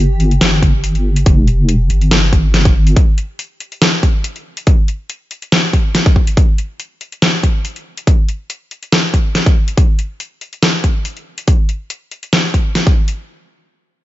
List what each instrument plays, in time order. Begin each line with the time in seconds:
Already playing: wobble bass G1
0.20 closed hi-hat
0.31 closed hi-hat
0.41 wobble bass G1, snare, closed hi-hat
0.62 kick, closed hi-hat
0.84 closed hi-hat
0.95 closed hi-hat
1.16 closed hi-hat
1.26 wobble bass F1, kick, closed hi-hat
1.47 closed hi-hat
1.69 closed hi-hat
1.90 wobble bass G1, closed hi-hat
2.01 closed hi-hat
2.11 snare, closed hi-hat
2.33 kick, closed hi-hat
2.54 snare, closed hi-hat
2.65 kick, closed hi-hat
2.87 closed hi-hat
2.96 kick, closed hi-hat
3.18 closed hi-hat
3.39 closed hi-hat
3.60 closed hi-hat
3.72 closed hi-hat
3.82 snare, closed hi-hat
4.03 kick, closed hi-hat
4.24 closed hi-hat
4.36 closed hi-hat
4.57 closed hi-hat
4.67 kick, closed hi-hat
4.88 closed hi-hat
5.10 closed hi-hat
5.31 closed hi-hat
5.42 closed hi-hat
5.52 snare, closed hi-hat
5.73 kick, closed hi-hat
5.95 snare, closed hi-hat
6.06 kick, closed hi-hat
6.16 kick
6.27 closed hi-hat
6.37 kick, closed hi-hat
6.58 closed hi-hat
6.80 closed hi-hat
7.01 closed hi-hat
7.12 closed hi-hat
7.22 snare, closed hi-hat
7.43 kick, closed hi-hat
7.65 closed hi-hat
7.76 closed hi-hat
7.98 closed hi-hat
8.07 kick, closed hi-hat
8.29 closed hi-hat
8.50 closed hi-hat
8.71 closed hi-hat
8.83 closed hi-hat
8.92 snare, closed hi-hat
9.14 kick, closed hi-hat
9.35 snare, closed hi-hat
9.46 kick, closed hi-hat
9.68 closed hi-hat
9.78 kick, closed hi-hat
9.99 closed hi-hat
10.20 closed hi-hat
10.41 closed hi-hat
10.53 closed hi-hat
10.63 snare, closed hi-hat
10.84 kick, closed hi-hat
11.05 closed hi-hat
11.17 closed hi-hat
11.38 closed hi-hat
11.48 kick, closed hi-hat
11.69 closed hi-hat
11.90 closed hi-hat
12.11 closed hi-hat
12.23 closed hi-hat
12.33 snare, closed hi-hat
12.54 kick, closed hi-hat
12.75 snare, closed hi-hat
12.87 kick, closed hi-hat
13.08 closed hi-hat